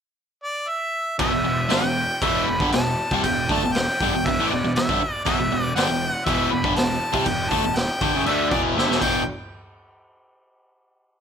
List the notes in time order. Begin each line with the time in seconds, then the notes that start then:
0.44 D5
0.69 E5
1.19 E1 E2 B2 E5, kick, crash
1.32 E1 E2 B2
1.44 E1 E2 B2
1.69 G1 G2 D3 G5, snare, crash
1.83 E1 E2 B2
2.22 E1 E2 B2 E3 E5, kick, crash
2.47 E1 E2 B2 B5
2.60 G1 G2 D3, kick
2.72 E1 E2 B2 A5, snare, crash
3.11 C2 C3 G3, kick
3.24 E1 E2 B2 G5, kick, crash
3.49 D2 D3 A3 A5, kick
3.64 E1 E2 B2
3.73 G5, snare, crash
4.01 G1 G2 D3, kick
4.14 E1 E2 B2
4.26 E1 E2 B2 E5, kick, crash
4.39 A1 A2 E3
4.49 E1 E2 B2 D5
4.64 E1 E2 B2
4.75 E1 E2 B2 E5, snare, crash
4.89 G1 G2 D3, kick
5.02 muted picked electric bass stroke, muted overdriven electric guitar stroke
5.24 E1 E2 B2 E5, kick, crash
5.38 E1 E2 B2
5.51 E1 E2 B2
5.75 G1 G2 D3 G5, snare, crash
5.89 E1 E2 B2
6.10 F#5
6.25 E1 E2 B2 E3 E5, kick, crash
6.51 E1 E2 B2 B5
6.64 G1 G2 D3, kick
6.75 E1 E2 B2 A5, snare, crash
7.13 C2 C3 G3, kick
7.26 E1 E2 B2 G5, kick, crash
7.50 D2 D3 A3 A5, kick
7.63 E1 E2 B2
7.76 G5, snare, crash
8.01 G1 G2 D3, kick
8.14 F#1 F#2 C#3
8.26 D2 D3 A3 D4 E5, crash
8.50 E1 E2 B2 E3 D5, kick
8.75 G1 G2 D3 E5, snare
8.89 E1 E2 B2, snare
9.01 E1 E2 B2 E3 G5, kick, crash